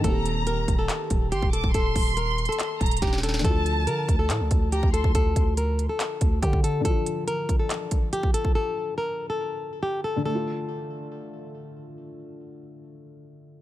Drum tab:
HH |x-----------x-----------x-----------x-----------x-----------x-----------x-----------x-----------|x-----------o-----------x-----------x---x---x---x-----------x--x--x--x--x-----------x-----------|x-----------x-----------x-----------x-----------x-----------x-----------x-----------x-----------|x-----------x-----------x-----------x-----------x-----------x-----------x-----------x-----------|
CP |------------------------------------------------x-----------------------------------------------|------------------------------------------------x-----------------------------------------------|------------------------------------------------x-----------------------------------------------|------------------------------------------------x-----------------------------------------------|
SD |------------------------------------------------------------------------------------------------|------------------------------------------------------------------------o--o--o--o--o--o--o--o--|------------------------------------------------------------------------------------------------|------------------------------------------------------------------------------------------------|
BD |o-----------------------------------o-----------------------o-----------------o-----------o-----|o-----------o-----------------------------------------------o-----------o-----------------------|o-----------------------------------o-----------------------o-----------------o-----------o-----|o-----------o-----------------------------------------------o-----------o-----o-----------------|

HH |x-----------x-----------x-----------x-----------x-----------x-----------x-----------x-----------|------------------------------------------------------------------------------------------------|------------------------------------------------------------------------------------------------|------------------------------------------------------------------------------------------------|
CP |------------------------------------------------x-----------------------------------------------|------------------------------------------------------------------------------------------------|------------------------------------------------------------------------------------------------|------------------------------------------------------------------------------------------------|
SD |------------------------------------------------------------------------------------------------|------------------------------------------------------------------------------------------------|------------------------------------------------------------------------------------------------|------------------------------------------------------------------------------------------------|
BD |o-----------------------------------o-----------------------o-----------------o-----------o-----|------------------------------------------------------------------------------------------------|------------------------------------------------------------------------------------------------|------------------------------------------------------------------------------------------------|